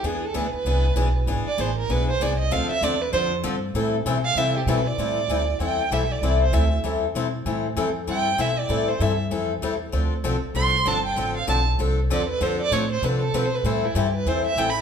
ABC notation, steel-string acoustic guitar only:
X:1
M:4/4
L:1/8
Q:"Swing" 1/4=194
K:Am
V:1 name="Steel-string acoustic guitar"
[E,B,D^G] z [E,B,DG] z [E,B,DG] z [E,B,DG] z | [E,B,D^G] z [E,B,DG] z [E,B,DG] z [E,B,DG] z | [D,F,CDA] z [D,F,CDA] z [D,F,CDA] z [D,F,CDA] z | [E,G,CEA] z [E,G,CEA] z [E,G,CEA] z [E,G,CEA] z |
[E,G,CEA] z [E,G,CEA] z [E,G,CEA] z [E,G,CEA] z | [E,G,CEA] z [E,G,CEA] z [E,G,CEA] z [E,G,CEA] z | [E,G,CEA] z [E,G,CEA] z [E,G,CEA] z [E,G,CEA] z | [E,G,CEA] z [E,G,CEA] z [E,G,CEA] z [E,G,CEA] z |
[D,F,CDA] z [D,F,CDA] z [D,F,CDA] z [D,F,CDA] z | [D,F,CDA] z [D,F,CDA] z [D,F,CDA] z [D,F,CDA] z | [D,F,CDA] z [D,F,CDA] z [D,F,CDA] z [D,F,CDA] z | [E,G,CEA] z [E,G,CEA] z [E,G,CEA] z [E,G,CEA] z |]